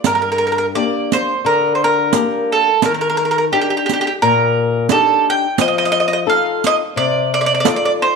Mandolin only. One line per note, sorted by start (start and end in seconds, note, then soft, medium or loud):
0.06 0.13 A#4 medium
0.15 0.21 A#4 medium
0.22 0.29 A#4 medium
0.32 0.37 A#4 medium
0.38 0.45 A#4 medium
0.47 0.51 A#4 medium
0.52 0.57 A#4 medium
0.58 0.65 A#4 medium
0.75 1.10 D5 medium
1.13 1.43 C5 medium
1.46 1.73 A#4 medium
1.75 1.82 C5 medium
1.84 2.52 A#4 medium
2.52 2.81 A4 medium
2.85 2.92 A#4 medium
2.94 3.00 A#4 medium
3.01 3.08 A#4 medium
3.10 3.16 A#4 medium
3.17 3.23 A#4 medium
3.25 3.30 A#4 medium
3.31 3.37 A#4 medium
3.38 3.44 A#4 medium
3.53 3.60 G4 medium
3.61 3.68 G4 medium
3.70 3.76 G4 medium
3.77 3.84 G4 medium
3.86 3.92 G4 medium
3.93 3.99 G4 medium
4.01 4.06 G4 medium
4.07 4.13 G4 medium
4.22 4.86 A#4 medium
4.92 5.25 A4 medium
5.30 5.58 G5 loud
5.61 5.67 D#5 loud
5.68 5.75 D#5 medium
5.78 5.84 D#5 medium
5.85 5.91 D#5 medium
5.92 5.99 D#5 loud
6.00 6.06 D#5 medium
6.08 6.12 D#5 medium
6.13 6.19 D#5 medium
6.30 6.63 F5 medium
6.67 6.75 D#5 loud
6.97 7.31 D5 medium
7.34 7.40 D5 loud
7.41 7.45 D5 medium
7.46 7.53 D5 medium
7.55 7.59 D5 medium
7.60 7.67 D5 medium
7.68 7.75 D5 medium
7.76 7.83 D5 medium
7.85 7.92 D5 medium
8.02 8.16 C5 medium